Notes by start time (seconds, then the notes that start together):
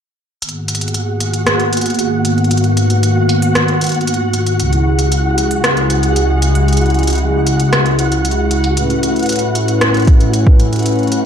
0.42 G#2 D#3 A#3 B3 F#4 G#4 F#5, closed hi-hat
0.49 closed hi-hat
0.68 closed hi-hat
0.75 closed hi-hat
0.81 closed hi-hat
0.88 closed hi-hat
0.94 closed hi-hat
1.20 closed hi-hat
1.34 closed hi-hat
1.47 cross-stick, closed hi-hat
1.60 closed hi-hat
1.73 closed hi-hat
1.77 closed hi-hat
1.81 closed hi-hat
1.86 closed hi-hat
1.90 closed hi-hat
1.94 closed hi-hat
1.99 closed hi-hat
2.25 closed hi-hat
2.38 closed hi-hat
2.44 closed hi-hat
2.51 F#4, closed hi-hat
2.57 closed hi-hat
2.64 closed hi-hat
2.77 closed hi-hat
2.90 closed hi-hat
3.03 closed hi-hat
3.29 closed hi-hat
3.42 closed hi-hat
3.55 cross-stick, closed hi-hat
3.68 closed hi-hat
3.81 closed hi-hat
3.84 closed hi-hat
3.87 closed hi-hat
3.89 closed hi-hat
3.92 closed hi-hat
3.94 closed hi-hat
4.01 closed hi-hat
4.07 closed hi-hat
4.14 closed hi-hat
4.33 closed hi-hat
4.47 closed hi-hat
4.60 C#2 C#3 G#3 E4 G#4, closed hi-hat
4.73 closed hi-hat
4.99 closed hi-hat
5.12 closed hi-hat
5.38 closed hi-hat
5.51 closed hi-hat
5.64 cross-stick, closed hi-hat
5.77 closed hi-hat
5.90 closed hi-hat
6.03 closed hi-hat
6.16 closed hi-hat
6.42 closed hi-hat
6.55 closed hi-hat
6.68 closed hi-hat
6.73 closed hi-hat
6.77 closed hi-hat
6.81 closed hi-hat
6.86 closed hi-hat
6.90 closed hi-hat
6.94 closed hi-hat
6.99 closed hi-hat
7.03 closed hi-hat
7.07 closed hi-hat
7.10 closed hi-hat
7.13 closed hi-hat
7.15 closed hi-hat
7.18 closed hi-hat
7.47 closed hi-hat
7.60 closed hi-hat
7.73 cross-stick, closed hi-hat
7.86 closed hi-hat
7.99 closed hi-hat
8.12 closed hi-hat
8.25 closed hi-hat
8.31 closed hi-hat
8.51 closed hi-hat
8.64 closed hi-hat
8.77 A2 A3 C#4 B4, closed hi-hat
8.90 closed hi-hat
9.03 closed hi-hat
9.16 closed hi-hat
9.19 closed hi-hat
9.23 closed hi-hat
9.26 closed hi-hat
9.29 closed hi-hat
9.32 closed hi-hat
9.36 closed hi-hat
9.39 closed hi-hat
9.55 closed hi-hat
9.68 closed hi-hat
9.81 cross-stick, closed hi-hat
9.94 closed hi-hat
9.97 closed hi-hat
10.00 closed hi-hat
10.02 closed hi-hat
10.05 kick, closed hi-hat
10.07 closed hi-hat
10.20 closed hi-hat
10.34 closed hi-hat
10.47 kick
10.60 closed hi-hat
10.73 closed hi-hat
10.76 closed hi-hat
10.79 closed hi-hat
10.82 closed hi-hat
10.86 closed hi-hat
10.89 closed hi-hat
10.92 closed hi-hat
10.95 closed hi-hat
10.99 closed hi-hat
11.03 closed hi-hat
11.07 closed hi-hat
11.12 closed hi-hat